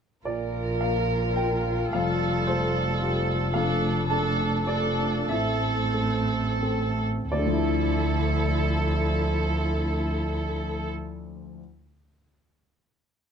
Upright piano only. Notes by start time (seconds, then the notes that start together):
0.25 A#2 D5
0.81 A#3 F5
1.36 F4 A#4 G5
1.93 F2 F5
2.47 A3 C5
3.01 F4 G4
3.54 F2 F5
4.10 A3 A5
4.67 D4 A4 D5
5.29 A2 E5
5.94 A3
6.62 C4 A4
7.32 D2 D5
7.39 D3
7.46 F3
7.53 E4
7.60 A4
7.67 E5